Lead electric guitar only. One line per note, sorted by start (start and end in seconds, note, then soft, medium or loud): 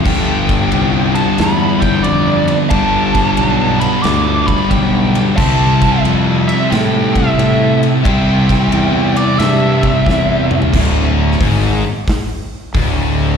0.06 1.12 G5 medium
1.15 1.39 A5 medium
1.36 1.54 A#5 loud
1.54 1.82 B5 loud
1.80 2.02 G5 medium
2.03 2.55 D5 medium
2.70 3.84 A5 loud
3.80 4.02 B5 loud
4.03 4.47 D6 loud
4.47 4.72 B5 loud
4.70 5.22 G5 loud
5.37 6.00 A5 medium
6.48 6.72 E5 medium
6.70 7.12 G5 loud
7.13 7.77 E5 medium
8.06 9.20 G5 loud
9.17 9.39 D5 medium
9.39 10.46 E5 medium